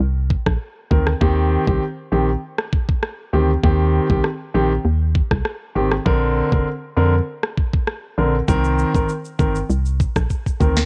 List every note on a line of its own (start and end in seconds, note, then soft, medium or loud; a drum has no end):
0.00 0.36 C2 loud
0.30 kick loud
0.46 0.58 A#1 medium
0.46 kick medium
0.46 cross-stick medium
0.91 1.15 D2 medium
0.91 1.07 D#3 medium
0.91 1.07 C4 medium
0.91 1.07 A#4 medium
0.91 kick medium
1.07 cross-stick medium
1.21 1.58 D#2 loud
1.21 1.64 D#3 medium
1.21 1.64 C4 medium
1.21 1.64 G4 loud
1.21 kick loud
1.67 1.79 C2 medium
1.67 1.82 C4 medium
1.67 1.82 G4 medium
1.67 kick medium
2.12 2.36 A#1 medium
2.12 2.28 D#3 medium
2.12 2.28 C4 medium
2.12 2.28 G4 medium
2.58 cross-stick medium
2.73 kick loud
2.89 kick medium
3.03 cross-stick medium
3.33 3.57 D2 medium
3.33 3.49 D#3 medium
3.33 3.49 C4 medium
3.33 3.50 G4 medium
3.63 4.00 D#2 loud
3.63 4.06 D#3 medium
3.63 4.06 C4 medium
3.63 4.06 G4 loud
3.63 kick loud
4.10 4.21 C2 medium
4.10 4.24 D#3 medium
4.10 4.24 C4 medium
4.10 4.24 G4 medium
4.10 kick medium
4.24 cross-stick medium
4.54 4.78 A#1 medium
4.54 4.71 D#3 medium
4.54 4.71 C4 medium
4.54 4.71 G4 medium
4.85 5.21 D#2 loud
5.15 kick loud
5.31 5.42 C2 medium
5.31 kick medium
5.31 cross-stick medium
5.45 cross-stick medium
5.75 6.00 G#1 medium
5.75 5.92 D#3 medium
5.75 5.92 C4 medium
5.75 5.92 G4 medium
5.91 cross-stick medium
6.06 6.42 A#1 loud
6.06 6.48 D3 medium
6.06 6.49 C4 medium
6.06 6.49 A#4 loud
6.06 kick loud
6.52 6.63 F1 medium
6.52 6.67 D3 medium
6.52 6.67 C4 medium
6.52 6.67 A#4 medium
6.52 kick medium
6.97 7.21 F2 medium
6.97 7.13 D3 medium
6.97 7.13 C4 medium
6.97 7.13 A#4 medium
7.43 cross-stick medium
7.58 kick loud
7.74 kick medium
7.87 cross-stick medium
8.18 8.42 A#1 medium
8.18 8.34 D3 medium
8.18 8.34 C4 medium
8.18 8.34 A#4 medium
8.48 8.85 C2 loud
8.48 8.91 D#3 medium
8.48 8.91 C4 medium
8.48 8.91 A#4 loud
8.48 kick loud
8.48 shaker medium
8.64 shaker soft
8.79 shaker medium
8.94 9.06 G#1 medium
8.94 9.09 D#3 medium
8.94 9.09 C4 medium
8.94 9.09 A#4 medium
8.94 kick medium
8.94 shaker medium
9.09 shaker medium
9.25 shaker soft
9.39 9.63 G1 medium
9.39 9.55 D#3 medium
9.39 9.55 C4 medium
9.39 9.56 A#4 medium
9.39 kick loud
9.39 shaker medium
9.55 shaker medium
9.70 10.06 C2 loud
9.70 shaker medium
9.85 shaker medium
10.00 kick loud
10.00 shaker medium
10.16 10.27 A#1 medium
10.16 kick medium
10.16 cross-stick medium
10.16 shaker medium
10.30 kick medium
10.30 shaker medium
10.46 kick medium
10.46 shaker medium
10.60 10.84 D2 medium
10.60 10.77 D#3 medium
10.60 10.77 C4 medium
10.60 10.77 A#4 medium
10.60 kick medium
10.60 shaker medium
10.77 snare medium
10.77 shaker medium